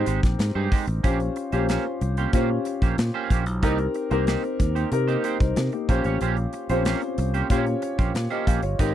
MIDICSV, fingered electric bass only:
0, 0, Header, 1, 2, 480
1, 0, Start_track
1, 0, Tempo, 645856
1, 774, Time_signature, 4, 2, 24, 8
1, 6647, End_track
2, 0, Start_track
2, 0, Title_t, "Fingered electric bass"
2, 0, Program_c, 0, 33
2, 53, Note_on_c, 0, 32, 86
2, 141, Note_off_c, 0, 32, 0
2, 172, Note_on_c, 0, 34, 71
2, 261, Note_off_c, 0, 34, 0
2, 289, Note_on_c, 0, 44, 93
2, 379, Note_off_c, 0, 44, 0
2, 411, Note_on_c, 0, 43, 74
2, 500, Note_off_c, 0, 43, 0
2, 650, Note_on_c, 0, 33, 74
2, 739, Note_off_c, 0, 33, 0
2, 773, Note_on_c, 0, 34, 87
2, 950, Note_off_c, 0, 34, 0
2, 1135, Note_on_c, 0, 34, 90
2, 1311, Note_off_c, 0, 34, 0
2, 1496, Note_on_c, 0, 36, 82
2, 1672, Note_off_c, 0, 36, 0
2, 1733, Note_on_c, 0, 46, 77
2, 1910, Note_off_c, 0, 46, 0
2, 2095, Note_on_c, 0, 34, 74
2, 2183, Note_off_c, 0, 34, 0
2, 2215, Note_on_c, 0, 46, 88
2, 2303, Note_off_c, 0, 46, 0
2, 2455, Note_on_c, 0, 34, 76
2, 2572, Note_off_c, 0, 34, 0
2, 2572, Note_on_c, 0, 35, 83
2, 2696, Note_off_c, 0, 35, 0
2, 2696, Note_on_c, 0, 36, 97
2, 2872, Note_off_c, 0, 36, 0
2, 3055, Note_on_c, 0, 36, 96
2, 3232, Note_off_c, 0, 36, 0
2, 3417, Note_on_c, 0, 39, 77
2, 3592, Note_off_c, 0, 39, 0
2, 3654, Note_on_c, 0, 48, 82
2, 3831, Note_off_c, 0, 48, 0
2, 4018, Note_on_c, 0, 36, 77
2, 4105, Note_off_c, 0, 36, 0
2, 4135, Note_on_c, 0, 48, 88
2, 4224, Note_off_c, 0, 48, 0
2, 4376, Note_on_c, 0, 34, 83
2, 4464, Note_off_c, 0, 34, 0
2, 4496, Note_on_c, 0, 33, 97
2, 4584, Note_off_c, 0, 33, 0
2, 4618, Note_on_c, 0, 34, 101
2, 4793, Note_off_c, 0, 34, 0
2, 4976, Note_on_c, 0, 34, 85
2, 5152, Note_off_c, 0, 34, 0
2, 5337, Note_on_c, 0, 36, 89
2, 5512, Note_off_c, 0, 36, 0
2, 5575, Note_on_c, 0, 46, 85
2, 5751, Note_off_c, 0, 46, 0
2, 5936, Note_on_c, 0, 34, 82
2, 6024, Note_off_c, 0, 34, 0
2, 6051, Note_on_c, 0, 46, 89
2, 6141, Note_off_c, 0, 46, 0
2, 6295, Note_on_c, 0, 34, 84
2, 6383, Note_off_c, 0, 34, 0
2, 6410, Note_on_c, 0, 31, 76
2, 6500, Note_off_c, 0, 31, 0
2, 6535, Note_on_c, 0, 32, 106
2, 6647, Note_off_c, 0, 32, 0
2, 6647, End_track
0, 0, End_of_file